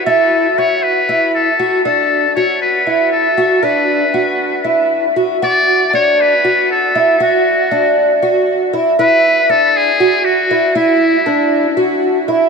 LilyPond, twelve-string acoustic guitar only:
\new Staff \with { instrumentName = "Twelve-string acoustic guitar" } { \time 7/8 \key d \lydian \tempo 4 = 118 e'4 fis'4 e'4 fis'8 | d'4 fis'4 e'4 fis'8 | d'4 fis'4 e'4 fis'8 | fis'4 d'4 fis'4 e'8 |
fis'4 d'4 fis'4 e'8 | e'4 d'4 fis'4 e'8 | e'4 d'4 fis'4 e'8 | }